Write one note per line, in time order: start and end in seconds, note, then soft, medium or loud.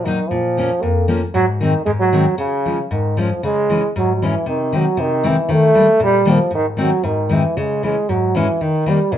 0.00 0.18 A#2 medium
0.04 0.30 D#3 medium
0.04 0.17 F#3 medium
0.04 0.18 A#3 soft
0.04 0.18 D#4 medium
0.29 0.70 A#2 medium
0.29 0.83 F3 loud
0.57 0.69 F3 medium
0.57 0.69 A#3 medium
0.57 0.70 C#4 medium
0.82 1.21 F2 medium
0.82 1.09 A#3 medium
1.08 1.20 F3 medium
1.08 1.20 A#3 medium
1.08 1.21 C#4 medium
1.34 1.73 G#2 medium
1.34 1.46 F#3 loud
1.61 1.72 D#3 medium
1.61 1.84 D#3 medium
1.61 1.72 G#3 medium
1.61 1.73 C4 medium
1.85 2.25 G#2 medium
1.85 1.92 G#3 loud
2.00 2.35 F#3 loud
2.13 2.24 D#3 medium
2.13 2.24 G#3 medium
2.13 2.25 C4 medium
2.38 2.77 C#3 medium
2.38 2.87 C#3 medium
2.66 2.77 F3 medium
2.66 2.77 G#3 medium
2.66 2.77 C#4 medium
2.91 3.30 G#2 medium
2.91 3.21 D#3 medium
3.17 3.29 F3 medium
3.17 3.44 F3 medium
3.17 3.29 G#3 medium
3.17 3.29 C#4 medium
3.43 3.82 C#3 medium
3.43 3.92 G#3 loud
3.70 3.81 E3 medium
3.70 3.81 G#3 medium
3.70 3.82 C#4 medium
3.96 4.34 G#2 medium
3.96 4.15 F#3 loud
4.16 4.26 F#3 medium
4.22 4.33 E3 medium
4.22 4.47 E3 medium
4.22 4.34 G#3 medium
4.22 4.34 C#4 medium
4.46 4.85 C3 medium
4.46 4.78 D#3 medium
4.72 4.84 D#3 medium
4.72 5.01 F#3 medium
4.72 4.84 G#3 medium
4.72 4.85 C4 medium
4.97 5.36 C3 medium
4.97 5.28 D#3 medium
5.24 5.35 D#3 medium
5.24 5.53 E3 medium
5.24 5.35 G#3 medium
5.24 5.35 C4 medium
5.49 5.73 D#3 medium
5.49 6.01 A3 loud
5.74 5.86 D#3 medium
5.74 5.86 G3 medium
5.74 5.87 A#3 medium
6.00 6.38 A#2 medium
6.00 6.31 G3 loud
6.25 6.37 D#3 medium
6.25 6.37 G3 medium
6.25 6.38 A#3 medium
6.30 6.53 F3 medium
6.51 6.90 G#2 medium
6.51 6.66 D#3 loud
6.77 6.89 D#3 medium
6.77 7.06 F#3 medium
6.77 6.89 G#3 medium
6.77 6.90 C4 medium
7.03 7.43 G#2 medium
7.03 7.34 D#3 medium
7.29 7.41 D#3 medium
7.29 7.59 E3 medium
7.29 7.42 G#3 medium
7.29 7.42 C4 medium
7.57 7.96 C#3 medium
7.57 7.84 G#3 medium
7.83 7.94 E3 medium
7.83 7.95 G#3 medium
7.83 8.11 G#3 medium
7.83 7.95 C#4 medium
8.09 8.47 G#2 medium
8.09 8.38 F#3 medium
8.35 8.46 E3 medium
8.35 8.63 E3 medium
8.35 8.47 G#3 medium
8.35 8.47 C#4 medium
8.61 8.85 D#3 medium
8.61 8.90 D#3 medium
8.86 8.97 D#3 medium
8.86 8.98 G3 medium
8.86 9.15 G3 medium
8.86 8.98 A#3 medium
9.12 9.18 A#2 medium
9.12 9.18 D#3 medium